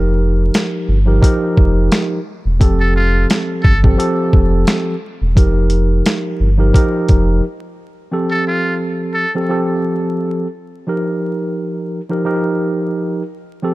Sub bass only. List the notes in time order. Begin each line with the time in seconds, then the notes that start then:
Already playing: F1
0.88 G1
1.58 F1
2.46 E1
2.61 F1
3.65 G1
4.33 F1
5.22 E1
5.37 F1
6.40 G1
7.09 F1